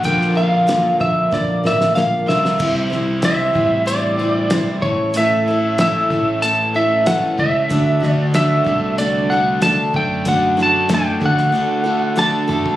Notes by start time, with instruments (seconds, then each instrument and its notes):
0.03 picked electric bass A#1, steel-string acoustic guitar A#2 F3 A#3 D4 F4 A#4, overdriven electric guitar D3, lead electric guitar G5, kick, closed hi-hat
0.21 snare
0.35 steel-string acoustic guitar A#3 D4 F4 A#4, lead electric guitar F5
0.67 steel-string acoustic guitar A#2 F3 A#3 D4 F4 A#4, snare, closed hi-hat
0.99 picked electric bass A#1, steel-string acoustic guitar A#3 D4 F4 A#4, lead electric guitar E5, kick
1.31 picked electric bass A#1, steel-string acoustic guitar A#3 D4 F4 A#4, lead electric guitar D5, kick, snare
1.64 picked electric bass A1, steel-string acoustic guitar A#3 D4 F4 A#4, lead electric guitar E5, snare
1.81 snare
1.95 picked electric bass A#1, steel-string acoustic guitar A#2 F3 A#3 D4 F4 A#4, lead electric guitar F5, snare
2.27 picked electric bass C2, overdriven electric guitar A#2 D3, steel-string acoustic guitar A#3 D4 F4 A#4, lead electric guitar E5, snare
2.45 snare
2.58 picked electric bass C2, steel-string acoustic guitar C3 E3 G3 C4 E4 C5, kick, crash
2.90 picked electric bass C2, steel-string acoustic guitar G3 C4 E4 C5, snare
3.22 steel-string acoustic guitar C3 E3 G3 C4 E4 C5, lead electric guitar E5, snare, closed hi-hat
3.53 picked electric bass A1, steel-string acoustic guitar G3 C4 E4 C5, kick
3.86 overdriven electric guitar E3, steel-string acoustic guitar G3 C4 E4 C5, lead electric guitar D5, closed hi-hat
4.18 overdriven electric guitar G3, steel-string acoustic guitar C4 E4 C5
4.23 steel-string acoustic guitar G3
4.50 steel-string acoustic guitar C3 E3 G3 C4 E4 C5, snare, closed hi-hat
4.82 picked electric bass A1, overdriven electric guitar A2, steel-string acoustic guitar A3 C#4 E4 A4, lead electric guitar C#5, kick
5.14 steel-string acoustic guitar A2 E3 A3 C#4 E4, lead electric guitar E5, closed hi-hat
5.18 steel-string acoustic guitar A4
5.48 steel-string acoustic guitar A3 C#4 E4 A4
5.78 steel-string acoustic guitar A2 E3 A3 C#4 E4 A4, lead electric guitar E5, snare, closed hi-hat
6.10 picked electric bass A1, steel-string acoustic guitar A3 C#4 E4 A4, kick
6.42 overdriven electric guitar E3, steel-string acoustic guitar A3 C#4 E4 A4, lead electric guitar A5, closed hi-hat
6.74 steel-string acoustic guitar A3 C#4 E4 A4, lead electric guitar E5
7.06 steel-string acoustic guitar A2 E3 A3 C#4 E4 A4, lead electric guitar F#5, snare, closed hi-hat
7.38 picked electric bass C#2, steel-string acoustic guitar A3 C#4 E4 A4, lead electric guitar E5, kick
7.69 picked electric bass D2, steel-string acoustic guitar D3 A3 D4 F#4 A4, kick, closed hi-hat
8.00 picked electric bass D2, steel-string acoustic guitar D4 F#4 A4, snare
8.08 lead electric guitar D5
8.34 steel-string acoustic guitar D3 A3 D4 F#4 A4, lead electric guitar E5, snare, closed hi-hat
8.64 picked electric bass C2, overdriven electric guitar A3, steel-string acoustic guitar D4 F#4 A4, kick
8.98 overdriven electric guitar D3, steel-string acoustic guitar A3 D4 F#4 A4, lead electric guitar D5, closed hi-hat
9.30 overdriven electric guitar A3, steel-string acoustic guitar D4 F#4 A4, lead electric guitar F#5
9.62 steel-string acoustic guitar D3 A3 D4 F#4 A4, lead electric guitar A5, snare, closed hi-hat
9.94 picked electric bass F#2, overdriven electric guitar A3, steel-string acoustic guitar D4 A4, lead electric guitar G5, kick
10.25 steel-string acoustic guitar D3 A3 D4 F#4 A4, lead electric guitar F#5, kick, closed hi-hat
10.57 steel-string acoustic guitar D4 F#4 A4, snare
10.63 lead electric guitar A5
10.89 steel-string acoustic guitar D3 A3 D4 A4, snare, closed hi-hat
10.94 lead electric guitar G5
11.21 picked electric bass D2, overdriven electric guitar A3, steel-string acoustic guitar D4 F#4 A4, kick
11.26 lead electric guitar F#5
11.38 snare
11.52 overdriven electric guitar D3, steel-string acoustic guitar A3 D4 F#4 A4
11.84 overdriven electric guitar A3, steel-string acoustic guitar D4 F#4 A4
12.16 steel-string acoustic guitar D3 A3 D4 F#4 A4, lead electric guitar A5, snare
12.48 overdriven electric guitar A3, steel-string acoustic guitar D4 F#4 A4, mid tom
12.66 floor tom